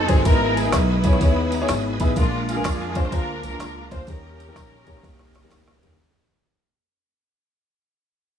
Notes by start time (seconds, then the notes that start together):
Already playing: A3 C4 D#4 F#4 B4
0.08 G1 C4 D#4 F#4 G#4 A4 C5, kick, ride, tambourine
0.25 G#1 G#2 F#3 B3 D#4 E4 G#4 A#4 B4 D#5, kick, ride, tambourine
0.32 G#3
0.57 G#4, ride, tambourine
0.65 B3 D#4 E4 G#4 A#4
0.72 B1 B3 E4, kick, snare, clap, ride, tambourine
1.04 B3 D#4 E4 G#4 C#5, kick, ride, tambourine
1.13 snare
1.21 D#2 B3 D#4 E4 G#4 C#5, kick, ride, tambourine
1.52 A#5, ride, tambourine
1.61 B3 D#4 E4 G#4 C#5
1.68 G#1 G#5, snare, clap, ride, tambourine
2.00 A1 B3 D#4 E4 G#4 B4 E5, kick, ride, tambourine
2.16 A#1 A#2 G#3 A#3 D4 F4 G#4 A#4, kick, ride, tambourine
2.49 D4 F4 G#4, ride, tambourine
2.56 A#3 D4 F4 G#4 A#4
2.65 F2, kick, snare, clap, ride, tambourine
2.95 A#3 D4 F4 G#4 C5, kick, snare, ride, tambourine
3.05 snare
3.12 D2 A#3 D4 F4 G#4 A#4 C5, kick, ride, tambourine
3.43 C2 D4 F4 A#4, ride, tambourine
3.53 A#3 D4 F4 G#4 A#4
3.59 C#2, snare, clap, ride, tambourine
3.91 D2 A#3 D4 F4 G#4 C5, kick, ride, tambourine
4.07 D#2 D#3 G3 A#3 C#4 D#4 G4 A#4, kick, ride, tambourine
4.40 ride, tambourine
4.48 A#3 C#4 D#4 G4 A#4
4.56 A#1, kick, snare, clap, ride, tambourine
4.87 A#3 C#4 D#4 G4 C#5, kick, ride, tambourine
4.97 snare
5.03 C2 A#3 C#4 D#4 G4 A#4, kick, snare, ride, tambourine
5.19 snare
5.34 snare, ride, tambourine
5.43 A#3 C#4 D#4 G4 A#4
5.51 C#2, snare, clap, ride, tambourine
5.68 snare
5.82 D2 A#3 C#4 D#4 G4 A#4, floor tom, ride, tambourine